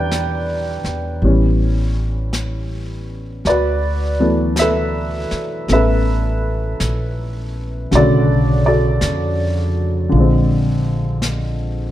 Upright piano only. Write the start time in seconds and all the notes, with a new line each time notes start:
Already playing: E3 G3 B3 D4 G4 B4 D5 G5
1.23 E3 G3 B3 C#4
3.47 F#4 B4 D5
4.19 E3 F#3 A3 B3
4.59 A4 B4 E5
5.69 A3 B3 C#4 E5
5.73 A4 B4
7.91 D3 A3 F#4
7.95 C#3 F#4 A4 D5
8.66 F#4 A4 D5
10.09 D3 F4
10.16 G#3 C4